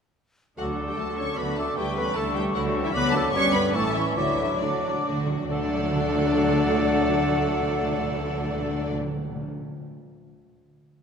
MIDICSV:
0, 0, Header, 1, 12, 480
1, 0, Start_track
1, 0, Key_signature, 2, "major"
1, 0, Tempo, 394218
1, 715, Time_signature, 3, 2, 24, 8
1, 3585, Tempo, 408441
1, 5025, Tempo, 443131
1, 12454, End_track
2, 0, Start_track
2, 0, Title_t, "Flute"
2, 0, Program_c, 0, 73
2, 713, Note_on_c, 0, 86, 36
2, 2144, Note_on_c, 0, 85, 47
2, 2162, Note_off_c, 0, 86, 0
2, 3579, Note_off_c, 0, 85, 0
2, 3590, Note_on_c, 0, 86, 61
2, 4530, Note_on_c, 0, 85, 50
2, 4548, Note_off_c, 0, 86, 0
2, 5015, Note_on_c, 0, 86, 49
2, 5032, Note_off_c, 0, 85, 0
2, 6215, Note_off_c, 0, 86, 0
2, 6458, Note_on_c, 0, 78, 66
2, 10173, Note_off_c, 0, 78, 0
2, 12454, End_track
3, 0, Start_track
3, 0, Title_t, "Violin section"
3, 0, Program_c, 1, 48
3, 706, Note_on_c, 1, 78, 47
3, 803, Note_off_c, 1, 78, 0
3, 1078, Note_on_c, 1, 79, 44
3, 1186, Note_on_c, 1, 81, 54
3, 1196, Note_off_c, 1, 79, 0
3, 1430, Note_on_c, 1, 85, 56
3, 1434, Note_off_c, 1, 81, 0
3, 1664, Note_on_c, 1, 83, 51
3, 1670, Note_off_c, 1, 85, 0
3, 1911, Note_off_c, 1, 83, 0
3, 1919, Note_on_c, 1, 81, 55
3, 2157, Note_off_c, 1, 81, 0
3, 2162, Note_on_c, 1, 79, 63
3, 2393, Note_off_c, 1, 79, 0
3, 2412, Note_on_c, 1, 83, 67
3, 2632, Note_on_c, 1, 81, 64
3, 2636, Note_off_c, 1, 83, 0
3, 2866, Note_on_c, 1, 79, 68
3, 2869, Note_off_c, 1, 81, 0
3, 2961, Note_off_c, 1, 79, 0
3, 3104, Note_on_c, 1, 78, 70
3, 3201, Note_off_c, 1, 78, 0
3, 3459, Note_on_c, 1, 76, 71
3, 3558, Note_on_c, 1, 83, 96
3, 3580, Note_off_c, 1, 76, 0
3, 3795, Note_on_c, 1, 81, 81
3, 3801, Note_off_c, 1, 83, 0
3, 4032, Note_on_c, 1, 85, 100
3, 4042, Note_off_c, 1, 81, 0
3, 4276, Note_off_c, 1, 85, 0
3, 4283, Note_on_c, 1, 83, 83
3, 4509, Note_on_c, 1, 81, 81
3, 4527, Note_off_c, 1, 83, 0
3, 4753, Note_on_c, 1, 76, 72
3, 4759, Note_off_c, 1, 81, 0
3, 5014, Note_off_c, 1, 76, 0
3, 5031, Note_on_c, 1, 76, 67
3, 5488, Note_on_c, 1, 74, 54
3, 5490, Note_off_c, 1, 76, 0
3, 6215, Note_off_c, 1, 74, 0
3, 6462, Note_on_c, 1, 74, 70
3, 10176, Note_off_c, 1, 74, 0
3, 12454, End_track
4, 0, Start_track
4, 0, Title_t, "Cor anglais"
4, 0, Program_c, 2, 69
4, 721, Note_on_c, 2, 69, 38
4, 1682, Note_on_c, 2, 74, 42
4, 1701, Note_off_c, 2, 69, 0
4, 2162, Note_on_c, 2, 71, 49
4, 2180, Note_off_c, 2, 74, 0
4, 2627, Note_on_c, 2, 69, 45
4, 2646, Note_off_c, 2, 71, 0
4, 3096, Note_off_c, 2, 69, 0
4, 3103, Note_on_c, 2, 69, 59
4, 3574, Note_on_c, 2, 74, 70
4, 3592, Note_off_c, 2, 69, 0
4, 4045, Note_off_c, 2, 74, 0
4, 4052, Note_on_c, 2, 71, 62
4, 4521, Note_off_c, 2, 71, 0
4, 4535, Note_on_c, 2, 73, 58
4, 5019, Note_on_c, 2, 74, 56
4, 5035, Note_off_c, 2, 73, 0
4, 6216, Note_off_c, 2, 74, 0
4, 6461, Note_on_c, 2, 69, 62
4, 10175, Note_off_c, 2, 69, 0
4, 12454, End_track
5, 0, Start_track
5, 0, Title_t, "Clarinet"
5, 0, Program_c, 3, 71
5, 722, Note_on_c, 3, 66, 41
5, 884, Note_off_c, 3, 66, 0
5, 1063, Note_on_c, 3, 67, 38
5, 1121, Note_off_c, 3, 67, 0
5, 1198, Note_on_c, 3, 69, 47
5, 1430, Note_off_c, 3, 69, 0
5, 1438, Note_on_c, 3, 73, 45
5, 1692, Note_on_c, 3, 71, 44
5, 1710, Note_off_c, 3, 73, 0
5, 1925, Note_off_c, 3, 71, 0
5, 1934, Note_on_c, 3, 69, 47
5, 2160, Note_off_c, 3, 69, 0
5, 2165, Note_on_c, 3, 67, 57
5, 2410, Note_on_c, 3, 71, 58
5, 2429, Note_off_c, 3, 67, 0
5, 2640, Note_off_c, 3, 71, 0
5, 2649, Note_on_c, 3, 69, 51
5, 2894, Note_on_c, 3, 67, 59
5, 2912, Note_off_c, 3, 69, 0
5, 3127, Note_on_c, 3, 66, 67
5, 3146, Note_off_c, 3, 67, 0
5, 3476, Note_off_c, 3, 66, 0
5, 3487, Note_on_c, 3, 64, 63
5, 3536, Note_off_c, 3, 64, 0
5, 3609, Note_on_c, 3, 71, 89
5, 3826, Note_off_c, 3, 71, 0
5, 3844, Note_on_c, 3, 69, 64
5, 3945, Note_off_c, 3, 69, 0
5, 4078, Note_on_c, 3, 73, 90
5, 4294, Note_off_c, 3, 73, 0
5, 4301, Note_on_c, 3, 71, 62
5, 4539, Note_on_c, 3, 69, 74
5, 4557, Note_off_c, 3, 71, 0
5, 4779, Note_off_c, 3, 69, 0
5, 4808, Note_on_c, 3, 64, 56
5, 4913, Note_off_c, 3, 64, 0
5, 5012, Note_on_c, 3, 64, 64
5, 5511, Note_on_c, 3, 62, 47
5, 5527, Note_off_c, 3, 64, 0
5, 6227, Note_off_c, 3, 62, 0
5, 6470, Note_on_c, 3, 74, 72
5, 10180, Note_off_c, 3, 74, 0
5, 12454, End_track
6, 0, Start_track
6, 0, Title_t, "Violin section"
6, 0, Program_c, 4, 48
6, 700, Note_on_c, 4, 66, 34
6, 709, Note_off_c, 4, 66, 0
6, 709, Note_on_c, 4, 66, 34
6, 937, Note_off_c, 4, 66, 0
6, 950, Note_on_c, 4, 62, 33
6, 958, Note_on_c, 4, 69, 31
6, 1176, Note_on_c, 4, 66, 31
6, 1183, Note_off_c, 4, 66, 0
6, 1183, Note_on_c, 4, 66, 32
6, 1195, Note_off_c, 4, 62, 0
6, 1199, Note_off_c, 4, 69, 0
6, 1425, Note_on_c, 4, 69, 33
6, 1430, Note_on_c, 4, 62, 34
6, 1432, Note_off_c, 4, 66, 0
6, 1673, Note_off_c, 4, 69, 0
6, 1676, Note_off_c, 4, 62, 0
6, 1679, Note_on_c, 4, 66, 33
6, 1686, Note_off_c, 4, 66, 0
6, 1686, Note_on_c, 4, 66, 35
6, 1906, Note_off_c, 4, 66, 0
6, 1918, Note_on_c, 4, 62, 38
6, 1921, Note_on_c, 4, 69, 38
6, 2155, Note_on_c, 4, 64, 42
6, 2157, Note_off_c, 4, 62, 0
6, 2158, Note_off_c, 4, 64, 0
6, 2158, Note_off_c, 4, 69, 0
6, 2158, Note_on_c, 4, 64, 42
6, 2372, Note_on_c, 4, 61, 40
6, 2374, Note_on_c, 4, 67, 41
6, 2379, Note_off_c, 4, 64, 0
6, 2604, Note_on_c, 4, 64, 44
6, 2610, Note_off_c, 4, 64, 0
6, 2610, Note_on_c, 4, 64, 41
6, 2621, Note_off_c, 4, 61, 0
6, 2621, Note_off_c, 4, 67, 0
6, 2858, Note_off_c, 4, 64, 0
6, 2864, Note_on_c, 4, 67, 45
6, 2874, Note_on_c, 4, 61, 45
6, 3086, Note_on_c, 4, 64, 46
6, 3104, Note_off_c, 4, 67, 0
6, 3109, Note_off_c, 4, 61, 0
6, 3318, Note_off_c, 4, 64, 0
6, 3332, Note_on_c, 4, 61, 50
6, 3336, Note_on_c, 4, 67, 49
6, 3559, Note_on_c, 4, 66, 56
6, 3567, Note_off_c, 4, 66, 0
6, 3567, Note_on_c, 4, 66, 57
6, 3579, Note_off_c, 4, 61, 0
6, 3581, Note_off_c, 4, 67, 0
6, 3793, Note_off_c, 4, 66, 0
6, 3797, Note_on_c, 4, 69, 52
6, 3802, Note_on_c, 4, 62, 52
6, 4029, Note_on_c, 4, 59, 54
6, 4038, Note_on_c, 4, 67, 51
6, 4044, Note_off_c, 4, 69, 0
6, 4046, Note_off_c, 4, 62, 0
6, 4262, Note_off_c, 4, 59, 0
6, 4266, Note_off_c, 4, 67, 0
6, 4280, Note_on_c, 4, 62, 50
6, 4287, Note_on_c, 4, 71, 55
6, 4525, Note_off_c, 4, 62, 0
6, 4529, Note_off_c, 4, 71, 0
6, 4535, Note_on_c, 4, 64, 49
6, 4537, Note_off_c, 4, 64, 0
6, 4537, Note_on_c, 4, 64, 50
6, 4761, Note_off_c, 4, 64, 0
6, 4769, Note_on_c, 4, 69, 46
6, 4772, Note_on_c, 4, 61, 47
6, 5017, Note_on_c, 4, 62, 46
6, 5020, Note_on_c, 4, 66, 44
6, 5022, Note_off_c, 4, 69, 0
6, 5024, Note_off_c, 4, 61, 0
6, 5239, Note_off_c, 4, 62, 0
6, 5241, Note_off_c, 4, 66, 0
6, 5260, Note_on_c, 4, 62, 42
6, 5266, Note_on_c, 4, 66, 42
6, 5472, Note_off_c, 4, 66, 0
6, 5476, Note_off_c, 4, 62, 0
6, 5485, Note_on_c, 4, 66, 40
6, 5489, Note_on_c, 4, 62, 38
6, 5715, Note_off_c, 4, 62, 0
6, 5718, Note_off_c, 4, 66, 0
6, 5728, Note_on_c, 4, 62, 38
6, 5731, Note_on_c, 4, 66, 37
6, 5958, Note_off_c, 4, 62, 0
6, 5962, Note_off_c, 4, 66, 0
6, 5971, Note_on_c, 4, 62, 40
6, 5975, Note_on_c, 4, 66, 41
6, 6177, Note_off_c, 4, 62, 0
6, 6183, Note_off_c, 4, 66, 0
6, 6190, Note_on_c, 4, 62, 41
6, 6196, Note_on_c, 4, 66, 43
6, 6430, Note_off_c, 4, 62, 0
6, 6443, Note_on_c, 4, 62, 58
6, 6446, Note_off_c, 4, 62, 0
6, 6446, Note_on_c, 4, 62, 60
6, 6451, Note_off_c, 4, 66, 0
6, 10168, Note_off_c, 4, 62, 0
6, 12454, End_track
7, 0, Start_track
7, 0, Title_t, "French horn section"
7, 0, Program_c, 5, 60
7, 692, Note_on_c, 5, 54, 44
7, 861, Note_off_c, 5, 54, 0
7, 1068, Note_on_c, 5, 55, 39
7, 1125, Note_off_c, 5, 55, 0
7, 1166, Note_on_c, 5, 57, 44
7, 1282, Note_off_c, 5, 57, 0
7, 1415, Note_on_c, 5, 61, 45
7, 1654, Note_on_c, 5, 59, 41
7, 1663, Note_off_c, 5, 61, 0
7, 1902, Note_on_c, 5, 57, 46
7, 1906, Note_off_c, 5, 59, 0
7, 2013, Note_off_c, 5, 57, 0
7, 2170, Note_on_c, 5, 55, 57
7, 2274, Note_off_c, 5, 55, 0
7, 2400, Note_on_c, 5, 59, 57
7, 2506, Note_off_c, 5, 59, 0
7, 2640, Note_on_c, 5, 57, 53
7, 2851, Note_on_c, 5, 55, 58
7, 2868, Note_off_c, 5, 57, 0
7, 3098, Note_off_c, 5, 55, 0
7, 3100, Note_on_c, 5, 54, 62
7, 3455, Note_off_c, 5, 54, 0
7, 3462, Note_on_c, 5, 52, 57
7, 3584, Note_off_c, 5, 52, 0
7, 3595, Note_on_c, 5, 59, 88
7, 3819, Note_off_c, 5, 59, 0
7, 3825, Note_on_c, 5, 57, 72
7, 4058, Note_off_c, 5, 57, 0
7, 4060, Note_on_c, 5, 61, 91
7, 4292, Note_on_c, 5, 59, 72
7, 4295, Note_off_c, 5, 61, 0
7, 4516, Note_on_c, 5, 57, 68
7, 4532, Note_off_c, 5, 59, 0
7, 4767, Note_off_c, 5, 57, 0
7, 4768, Note_on_c, 5, 52, 61
7, 4981, Note_off_c, 5, 52, 0
7, 4995, Note_on_c, 5, 52, 62
7, 5473, Note_off_c, 5, 52, 0
7, 5499, Note_on_c, 5, 50, 48
7, 6221, Note_off_c, 5, 50, 0
7, 6465, Note_on_c, 5, 62, 71
7, 10177, Note_off_c, 5, 62, 0
7, 12454, End_track
8, 0, Start_track
8, 0, Title_t, "Viola section"
8, 0, Program_c, 6, 48
8, 707, Note_on_c, 6, 57, 35
8, 708, Note_on_c, 6, 54, 33
8, 936, Note_off_c, 6, 57, 0
8, 937, Note_off_c, 6, 54, 0
8, 952, Note_on_c, 6, 50, 30
8, 959, Note_on_c, 6, 54, 31
8, 1180, Note_off_c, 6, 54, 0
8, 1195, Note_on_c, 6, 54, 34
8, 1196, Note_off_c, 6, 50, 0
8, 1205, Note_on_c, 6, 57, 33
8, 1425, Note_off_c, 6, 54, 0
8, 1440, Note_on_c, 6, 54, 34
8, 1441, Note_on_c, 6, 50, 34
8, 1443, Note_off_c, 6, 57, 0
8, 1670, Note_off_c, 6, 54, 0
8, 1681, Note_off_c, 6, 50, 0
8, 1685, Note_on_c, 6, 54, 35
8, 1693, Note_on_c, 6, 57, 34
8, 1905, Note_off_c, 6, 54, 0
8, 1909, Note_off_c, 6, 57, 0
8, 1920, Note_on_c, 6, 54, 38
8, 1921, Note_on_c, 6, 50, 36
8, 2158, Note_off_c, 6, 50, 0
8, 2158, Note_off_c, 6, 54, 0
8, 2168, Note_on_c, 6, 55, 42
8, 2172, Note_on_c, 6, 57, 41
8, 2384, Note_off_c, 6, 55, 0
8, 2386, Note_off_c, 6, 57, 0
8, 2400, Note_on_c, 6, 55, 40
8, 2403, Note_on_c, 6, 52, 39
8, 2615, Note_off_c, 6, 55, 0
8, 2629, Note_on_c, 6, 55, 44
8, 2633, Note_on_c, 6, 57, 45
8, 2636, Note_off_c, 6, 52, 0
8, 2847, Note_off_c, 6, 55, 0
8, 2862, Note_on_c, 6, 55, 46
8, 2867, Note_on_c, 6, 52, 44
8, 2869, Note_off_c, 6, 57, 0
8, 3094, Note_off_c, 6, 55, 0
8, 3105, Note_off_c, 6, 52, 0
8, 3108, Note_on_c, 6, 57, 47
8, 3109, Note_on_c, 6, 55, 46
8, 3330, Note_off_c, 6, 55, 0
8, 3330, Note_off_c, 6, 57, 0
8, 3352, Note_on_c, 6, 55, 49
8, 3358, Note_on_c, 6, 52, 50
8, 3589, Note_off_c, 6, 55, 0
8, 3590, Note_on_c, 6, 54, 54
8, 3592, Note_off_c, 6, 52, 0
8, 3594, Note_on_c, 6, 57, 54
8, 3805, Note_off_c, 6, 54, 0
8, 3807, Note_off_c, 6, 57, 0
8, 3829, Note_on_c, 6, 50, 54
8, 3833, Note_on_c, 6, 54, 53
8, 4059, Note_off_c, 6, 50, 0
8, 4062, Note_off_c, 6, 54, 0
8, 4068, Note_on_c, 6, 55, 55
8, 4283, Note_off_c, 6, 55, 0
8, 4308, Note_on_c, 6, 59, 53
8, 4310, Note_on_c, 6, 50, 55
8, 4540, Note_off_c, 6, 59, 0
8, 4541, Note_off_c, 6, 50, 0
8, 4546, Note_on_c, 6, 57, 49
8, 4549, Note_off_c, 6, 57, 0
8, 4549, Note_on_c, 6, 57, 53
8, 4767, Note_off_c, 6, 57, 0
8, 4786, Note_on_c, 6, 61, 46
8, 4787, Note_on_c, 6, 52, 47
8, 5030, Note_off_c, 6, 52, 0
8, 5030, Note_off_c, 6, 61, 0
8, 5040, Note_on_c, 6, 57, 43
8, 5251, Note_off_c, 6, 57, 0
8, 5275, Note_on_c, 6, 54, 39
8, 5504, Note_off_c, 6, 54, 0
8, 5514, Note_on_c, 6, 57, 40
8, 5517, Note_off_c, 6, 57, 0
8, 5517, Note_on_c, 6, 57, 42
8, 5745, Note_off_c, 6, 57, 0
8, 5757, Note_on_c, 6, 54, 41
8, 5758, Note_off_c, 6, 54, 0
8, 5758, Note_on_c, 6, 54, 37
8, 5987, Note_off_c, 6, 54, 0
8, 5989, Note_on_c, 6, 57, 39
8, 6209, Note_off_c, 6, 57, 0
8, 6233, Note_on_c, 6, 54, 38
8, 6234, Note_off_c, 6, 54, 0
8, 6234, Note_on_c, 6, 54, 42
8, 6470, Note_off_c, 6, 54, 0
8, 6490, Note_on_c, 6, 54, 70
8, 6494, Note_on_c, 6, 57, 68
8, 10189, Note_off_c, 6, 54, 0
8, 10192, Note_off_c, 6, 57, 0
8, 12454, End_track
9, 0, Start_track
9, 0, Title_t, "Bassoon"
9, 0, Program_c, 7, 70
9, 703, Note_on_c, 7, 57, 37
9, 3531, Note_off_c, 7, 57, 0
9, 3581, Note_on_c, 7, 54, 52
9, 4055, Note_on_c, 7, 55, 60
9, 4073, Note_off_c, 7, 54, 0
9, 4525, Note_off_c, 7, 55, 0
9, 4532, Note_on_c, 7, 52, 57
9, 5033, Note_on_c, 7, 54, 45
9, 5049, Note_off_c, 7, 52, 0
9, 6223, Note_off_c, 7, 54, 0
9, 6475, Note_on_c, 7, 57, 62
9, 10182, Note_off_c, 7, 57, 0
9, 12454, End_track
10, 0, Start_track
10, 0, Title_t, "Cello section"
10, 0, Program_c, 8, 48
10, 716, Note_on_c, 8, 50, 41
10, 1142, Note_off_c, 8, 50, 0
10, 1195, Note_on_c, 8, 50, 39
10, 1622, Note_off_c, 8, 50, 0
10, 1676, Note_on_c, 8, 50, 40
10, 2099, Note_off_c, 8, 50, 0
10, 2157, Note_on_c, 8, 50, 47
10, 2576, Note_off_c, 8, 50, 0
10, 2633, Note_on_c, 8, 50, 55
10, 3051, Note_off_c, 8, 50, 0
10, 3113, Note_on_c, 8, 50, 55
10, 3532, Note_off_c, 8, 50, 0
10, 3595, Note_on_c, 8, 50, 71
10, 4004, Note_off_c, 8, 50, 0
10, 4054, Note_on_c, 8, 43, 70
10, 4475, Note_off_c, 8, 43, 0
10, 4540, Note_on_c, 8, 45, 58
10, 4970, Note_off_c, 8, 45, 0
10, 5034, Note_on_c, 8, 50, 52
10, 5445, Note_off_c, 8, 50, 0
10, 5500, Note_on_c, 8, 50, 49
10, 5921, Note_off_c, 8, 50, 0
10, 5971, Note_on_c, 8, 50, 48
10, 6403, Note_off_c, 8, 50, 0
10, 6459, Note_on_c, 8, 50, 71
10, 10174, Note_off_c, 8, 50, 0
10, 12454, End_track
11, 0, Start_track
11, 0, Title_t, "Timpani"
11, 0, Program_c, 10, 47
11, 5125, Note_on_c, 10, 50, 29
11, 5202, Note_off_c, 10, 50, 0
11, 5306, Note_on_c, 10, 50, 33
11, 5378, Note_off_c, 10, 50, 0
11, 5391, Note_on_c, 10, 50, 37
11, 5469, Note_off_c, 10, 50, 0
11, 5491, Note_on_c, 10, 50, 42
11, 5557, Note_off_c, 10, 50, 0
11, 5570, Note_on_c, 10, 50, 43
11, 5649, Note_off_c, 10, 50, 0
11, 5747, Note_on_c, 10, 50, 53
11, 5823, Note_off_c, 10, 50, 0
11, 5836, Note_on_c, 10, 50, 59
11, 5918, Note_off_c, 10, 50, 0
11, 5937, Note_on_c, 10, 50, 58
11, 6012, Note_off_c, 10, 50, 0
11, 6025, Note_on_c, 10, 50, 68
11, 6101, Note_off_c, 10, 50, 0
11, 6114, Note_on_c, 10, 50, 72
11, 6195, Note_off_c, 10, 50, 0
11, 6210, Note_on_c, 10, 50, 78
11, 6290, Note_off_c, 10, 50, 0
11, 6302, Note_on_c, 10, 50, 86
11, 6382, Note_off_c, 10, 50, 0
11, 6479, Note_on_c, 10, 50, 64
11, 6547, Note_off_c, 10, 50, 0
11, 6550, Note_on_c, 10, 50, 65
11, 6618, Note_off_c, 10, 50, 0
11, 6618, Note_on_c, 10, 50, 73
11, 6686, Note_off_c, 10, 50, 0
11, 6693, Note_on_c, 10, 50, 65
11, 6760, Note_off_c, 10, 50, 0
11, 6760, Note_on_c, 10, 50, 66
11, 6823, Note_off_c, 10, 50, 0
11, 6823, Note_on_c, 10, 50, 66
11, 6891, Note_off_c, 10, 50, 0
11, 6891, Note_on_c, 10, 50, 76
11, 6954, Note_off_c, 10, 50, 0
11, 6954, Note_on_c, 10, 50, 64
11, 7022, Note_off_c, 10, 50, 0
11, 7089, Note_on_c, 10, 50, 69
11, 7157, Note_off_c, 10, 50, 0
11, 7161, Note_on_c, 10, 50, 69
11, 7226, Note_off_c, 10, 50, 0
11, 7226, Note_on_c, 10, 50, 66
11, 7294, Note_off_c, 10, 50, 0
11, 7295, Note_on_c, 10, 50, 70
11, 7363, Note_off_c, 10, 50, 0
11, 7363, Note_on_c, 10, 50, 71
11, 7432, Note_off_c, 10, 50, 0
11, 7437, Note_on_c, 10, 50, 69
11, 7505, Note_off_c, 10, 50, 0
11, 7506, Note_on_c, 10, 50, 72
11, 7574, Note_off_c, 10, 50, 0
11, 7579, Note_on_c, 10, 50, 66
11, 7647, Note_off_c, 10, 50, 0
11, 7648, Note_on_c, 10, 50, 64
11, 7716, Note_off_c, 10, 50, 0
11, 7716, Note_on_c, 10, 50, 73
11, 7784, Note_off_c, 10, 50, 0
11, 7792, Note_on_c, 10, 50, 63
11, 7860, Note_off_c, 10, 50, 0
11, 7860, Note_on_c, 10, 50, 67
11, 7928, Note_off_c, 10, 50, 0
11, 7931, Note_on_c, 10, 50, 69
11, 7995, Note_off_c, 10, 50, 0
11, 7995, Note_on_c, 10, 50, 73
11, 8061, Note_off_c, 10, 50, 0
11, 8061, Note_on_c, 10, 50, 57
11, 8129, Note_off_c, 10, 50, 0
11, 8131, Note_on_c, 10, 50, 73
11, 8198, Note_off_c, 10, 50, 0
11, 8198, Note_on_c, 10, 50, 66
11, 8264, Note_off_c, 10, 50, 0
11, 8264, Note_on_c, 10, 50, 74
11, 8331, Note_off_c, 10, 50, 0
11, 8331, Note_on_c, 10, 50, 65
11, 8399, Note_off_c, 10, 50, 0
11, 8399, Note_on_c, 10, 50, 72
11, 8466, Note_off_c, 10, 50, 0
11, 8466, Note_on_c, 10, 50, 65
11, 8532, Note_off_c, 10, 50, 0
11, 8532, Note_on_c, 10, 50, 66
11, 8600, Note_off_c, 10, 50, 0
11, 8600, Note_on_c, 10, 50, 64
11, 8668, Note_off_c, 10, 50, 0
11, 8672, Note_on_c, 10, 50, 68
11, 8736, Note_off_c, 10, 50, 0
11, 8736, Note_on_c, 10, 50, 68
11, 8804, Note_off_c, 10, 50, 0
11, 8807, Note_on_c, 10, 50, 68
11, 8875, Note_off_c, 10, 50, 0
11, 8877, Note_on_c, 10, 50, 63
11, 8945, Note_off_c, 10, 50, 0
11, 8946, Note_on_c, 10, 50, 67
11, 9014, Note_off_c, 10, 50, 0
11, 9015, Note_on_c, 10, 50, 60
11, 9083, Note_off_c, 10, 50, 0
11, 9084, Note_on_c, 10, 50, 70
11, 9148, Note_off_c, 10, 50, 0
11, 9148, Note_on_c, 10, 50, 68
11, 9215, Note_off_c, 10, 50, 0
11, 9215, Note_on_c, 10, 50, 77
11, 9283, Note_off_c, 10, 50, 0
11, 9285, Note_on_c, 10, 50, 64
11, 9353, Note_off_c, 10, 50, 0
11, 9358, Note_on_c, 10, 50, 74
11, 9426, Note_off_c, 10, 50, 0
11, 9429, Note_on_c, 10, 50, 64
11, 9497, Note_off_c, 10, 50, 0
11, 9498, Note_on_c, 10, 50, 65
11, 9566, Note_off_c, 10, 50, 0
11, 9566, Note_on_c, 10, 50, 67
11, 9633, Note_off_c, 10, 50, 0
11, 9633, Note_on_c, 10, 50, 68
11, 9697, Note_off_c, 10, 50, 0
11, 9697, Note_on_c, 10, 50, 65
11, 9765, Note_off_c, 10, 50, 0
11, 9765, Note_on_c, 10, 50, 69
11, 9833, Note_off_c, 10, 50, 0
11, 9834, Note_on_c, 10, 50, 71
11, 9897, Note_off_c, 10, 50, 0
11, 9897, Note_on_c, 10, 50, 72
11, 9965, Note_off_c, 10, 50, 0
11, 9967, Note_on_c, 10, 50, 64
11, 10030, Note_off_c, 10, 50, 0
11, 10030, Note_on_c, 10, 50, 67
11, 10098, Note_off_c, 10, 50, 0
11, 10105, Note_on_c, 10, 50, 66
11, 10173, Note_off_c, 10, 50, 0
11, 10174, Note_on_c, 10, 50, 69
11, 10242, Note_off_c, 10, 50, 0
11, 10242, Note_on_c, 10, 50, 65
11, 10308, Note_off_c, 10, 50, 0
11, 10308, Note_on_c, 10, 50, 73
11, 10376, Note_off_c, 10, 50, 0
11, 10376, Note_on_c, 10, 50, 66
11, 10441, Note_off_c, 10, 50, 0
11, 10441, Note_on_c, 10, 50, 73
11, 10509, Note_off_c, 10, 50, 0
11, 10515, Note_on_c, 10, 50, 61
11, 10577, Note_off_c, 10, 50, 0
11, 10577, Note_on_c, 10, 50, 73
11, 10642, Note_off_c, 10, 50, 0
11, 10642, Note_on_c, 10, 50, 70
11, 10708, Note_off_c, 10, 50, 0
11, 10708, Note_on_c, 10, 50, 66
11, 10774, Note_off_c, 10, 50, 0
11, 10774, Note_on_c, 10, 50, 68
11, 10842, Note_off_c, 10, 50, 0
11, 12454, End_track
12, 0, Start_track
12, 0, Title_t, "Double bass section"
12, 0, Program_c, 11, 48
12, 707, Note_on_c, 11, 38, 43
12, 1137, Note_off_c, 11, 38, 0
12, 1189, Note_on_c, 11, 38, 41
12, 1619, Note_off_c, 11, 38, 0
12, 1677, Note_on_c, 11, 38, 44
12, 2099, Note_off_c, 11, 38, 0
12, 2157, Note_on_c, 11, 38, 51
12, 2576, Note_off_c, 11, 38, 0
12, 2626, Note_on_c, 11, 38, 55
12, 3047, Note_off_c, 11, 38, 0
12, 3103, Note_on_c, 11, 38, 59
12, 3527, Note_off_c, 11, 38, 0
12, 3580, Note_on_c, 11, 38, 69
12, 3996, Note_off_c, 11, 38, 0
12, 4050, Note_on_c, 11, 31, 68
12, 4472, Note_off_c, 11, 31, 0
12, 4529, Note_on_c, 11, 33, 65
12, 4965, Note_off_c, 11, 33, 0
12, 5023, Note_on_c, 11, 38, 53
12, 5439, Note_off_c, 11, 38, 0
12, 5493, Note_on_c, 11, 38, 51
12, 5917, Note_off_c, 11, 38, 0
12, 5974, Note_on_c, 11, 38, 48
12, 6405, Note_off_c, 11, 38, 0
12, 6465, Note_on_c, 11, 38, 63
12, 10177, Note_off_c, 11, 38, 0
12, 12454, End_track
0, 0, End_of_file